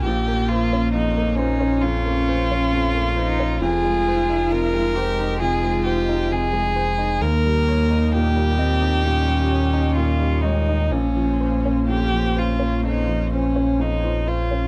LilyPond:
<<
  \new Staff \with { instrumentName = "Analog synth pad" } { \time 4/4 \key bes \dorian \tempo 4 = 66 <des' f' c''>1 | <aes ees' c''>1 | <ees' g' ees''>1 | <des' f' c''>1 | }
  \new Staff \with { instrumentName = "Violin" } { \time 4/4 \key bes \dorian g'8 f'8 ees'8 des'8 f'2 | aes'4 bes'4 aes'8 g'8 aes'4 | bes'4 g'2 f'8 ees'8 | des'4 g'8 f'8 ees'8 des'8 ees'8 f'8 | }
  \new Staff \with { instrumentName = "Cello" } { \time 4/4 \key bes \dorian bes4. ees'8 des'4. ees'8 | f'4. g'8 f'4. r8 | bes4. c'8 des'4. aes8 | bes2.~ bes8 r8 | }
  \new Staff \with { instrumentName = "Upright piano" } { \time 4/4 \key bes \dorian bes,,16 bes16 c''16 des'16 f,16 bes16 c''16 des'16 f,16 bes16 c''16 des'16 f,16 bes16 c''16 des'16 | f,16 aes16 c''16 ees'16 c16 aes16 c''16 ees'16 c16 aes16 c''16 ees'16 c16 aes16 c''16 ees'16 | ees,16 g16 des''16 ees'16 bes,16 g16 ees''16 ees'16 bes,16 g16 des''16 ees'16 bes,16 g16 des''16 ees'16 | bes,,16 f16 c''16 des'16 f,16 f16 c''16 des'16 f,16 f16 c''16 des'16 f,16 f16 c''16 des'16 | }
  \new Staff \with { instrumentName = "Sub bass" } { \clef bass \time 4/4 \key bes \dorian bes,,1 | f,,1 | ees,1 | bes,,1 | }
>>